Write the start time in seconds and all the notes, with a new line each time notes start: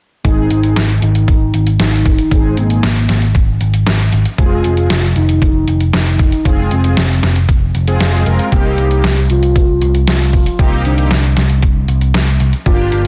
0.25 G#1 G#3 C4 D#4 G#4, kick, closed hi-hat
0.50 G#1, closed hi-hat
0.63 G#3 C4 D#4 G#4, closed hi-hat
0.76 G#1, snare, closed hi-hat
1.02 G#1 D#4, closed hi-hat
1.15 closed hi-hat
1.28 kick, closed hi-hat
1.54 G#1, closed hi-hat
1.67 closed hi-hat
1.80 G#1 D#4, snare, closed hi-hat
2.06 G#1, kick, closed hi-hat
2.18 closed hi-hat
2.31 G#1 G#3 C4 D#4 G#4, kick, closed hi-hat
2.57 G#1 A#3, closed hi-hat
2.70 G#3 C4 D#4 G#4, closed hi-hat
2.83 G#1, snare, closed hi-hat
3.09 G#1, snare, closed hi-hat
3.22 closed hi-hat
3.35 G#1, kick, closed hi-hat
3.61 G#1, closed hi-hat
3.74 closed hi-hat
3.87 snare, closed hi-hat
4.12 G#1, closed hi-hat
4.25 closed hi-hat
4.38 F1 G#3 C4 F4 G#4, kick, closed hi-hat
4.64 F1, closed hi-hat
4.77 G#3 C4 F4 G#4, closed hi-hat
4.90 F1, snare, closed hi-hat
5.16 F1 D#4, closed hi-hat
5.29 closed hi-hat
5.42 F1, kick, closed hi-hat
5.68 F1, closed hi-hat
5.81 closed hi-hat
5.93 F1 D#4, snare, closed hi-hat
6.19 F1, kick, closed hi-hat
6.32 closed hi-hat
6.45 F1 G#3 C4 F4 G#4, kick, closed hi-hat
6.71 F1 C4, closed hi-hat
6.84 G#3 C4 F4 G#4, closed hi-hat
6.97 F1, snare, closed hi-hat
7.23 F1, snare, closed hi-hat
7.36 closed hi-hat
7.49 F1, kick, closed hi-hat
7.75 F1, closed hi-hat
7.87 G#3 C4 F4 G#4, closed hi-hat
8.01 F1, snare, closed hi-hat
8.26 F1 G#3 C4 F4 A#4, closed hi-hat
8.39 closed hi-hat
8.52 C2 A#3 C4 D#4 G4, kick, closed hi-hat
8.78 C2, closed hi-hat
8.91 A#3 C4 D#4 G4, closed hi-hat
9.04 C2, snare, closed hi-hat
9.30 C2 F4, closed hi-hat
9.43 closed hi-hat
9.56 C2, kick, closed hi-hat
9.82 C2, closed hi-hat
9.95 closed hi-hat
10.08 F4, snare, closed hi-hat
10.33 C2, kick, closed hi-hat
10.46 closed hi-hat
10.59 C2 A#3 C4 D#4 G4, kick, closed hi-hat
10.85 C2 D4, closed hi-hat
10.98 A#3 C4 D#4 G4, closed hi-hat
11.11 C2, snare, closed hi-hat
11.37 C2, snare, closed hi-hat
11.50 closed hi-hat
11.62 C2, kick, closed hi-hat
11.88 C2, closed hi-hat
12.01 closed hi-hat
12.14 C2, snare, closed hi-hat
12.40 C2, closed hi-hat
12.53 closed hi-hat
12.66 G1 A#3 D4 F4 G4, kick, closed hi-hat
12.92 G1, closed hi-hat